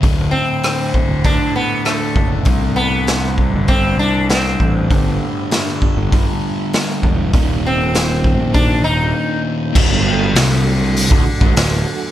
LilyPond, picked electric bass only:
\new Staff \with { instrumentName = "Picked electric bass" } { \clef bass \time 4/4 \key d \mixolydian \tempo 4 = 99 d,,8 r4 r16 d,,8 r4 r16 fis,,8 | c,4.~ c,16 g,,8. c,4 a,,8 | g,,8 r4 r16 g,,8 r4 r16 e,,8 | ees,,4.~ ees,,16 bes,,8. ees,,8 r4 |
d,,16 g,,8. c,4~ c,16 d,,16 r16 gis,,16 d,,8 r8 | }